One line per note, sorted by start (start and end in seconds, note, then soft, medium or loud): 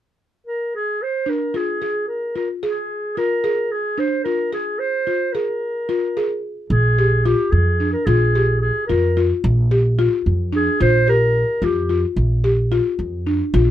0.47 0.71 A#4 medium
0.75 1.04 G#4 medium
1.02 1.31 C5 medium
1.26 1.47 D4 soft
1.26 1.58 A#4 medium
1.54 1.75 F4 soft
1.54 2.07 G#4 medium
1.82 2.24 G#4 medium
2.08 2.33 A#4 medium
2.36 2.56 F4 soft
2.36 2.48 A#4 medium
2.63 3.05 G#4 medium
2.63 3.14 G#4 medium
3.17 3.38 F4 soft
3.17 3.73 A#4 medium
3.44 3.86 G#4 medium
3.72 4.00 G#4 medium
3.98 4.19 D4 medium
3.98 4.23 C5 medium
4.24 4.47 F4 soft
4.24 4.50 A#4 medium
4.53 4.95 G#4 soft
4.53 4.80 G#4 medium
4.79 5.34 C5 medium
5.07 5.28 F4 soft
5.32 5.77 G#4 medium
5.32 6.42 A#4 medium
5.89 6.10 F4 medium
6.17 6.59 G#4 medium
6.70 7.33 A#1 medium
6.70 7.26 G#4 medium
6.99 7.20 G4 medium
7.24 7.68 F4 medium
7.24 7.52 G4 medium
7.51 7.94 F2 medium
7.51 7.92 G#4 medium
7.80 8.01 D4 soft
7.92 8.07 A#4 medium
8.06 8.69 A#1 medium
8.06 8.29 F4 medium
8.06 8.60 G#4 medium
8.35 8.78 G4 medium
8.61 8.86 G#4 medium
8.87 9.31 F2 medium
8.87 9.11 F4 medium
8.87 9.26 A#4 medium
9.17 9.38 F4 medium
9.44 10.06 A#1 medium
9.71 9.92 G4 medium
9.99 10.41 F4 medium
10.26 10.67 F2 medium
10.53 10.74 D4 medium
10.53 10.80 G#4 medium
10.80 11.43 A#1 medium
10.80 11.01 F4 medium
10.80 11.06 C5 medium
11.08 11.50 G4 soft
11.08 11.65 A#4 medium
11.62 12.03 F2 medium
11.62 11.84 F4 medium
11.62 12.04 G4 medium
11.89 12.11 F4 soft
12.16 12.79 A#1 medium
12.44 12.65 G4 medium
12.72 13.14 F4 medium
12.99 13.40 F2 medium
13.27 13.47 D4 medium
13.54 13.71 A#1 medium
13.54 13.71 F4 medium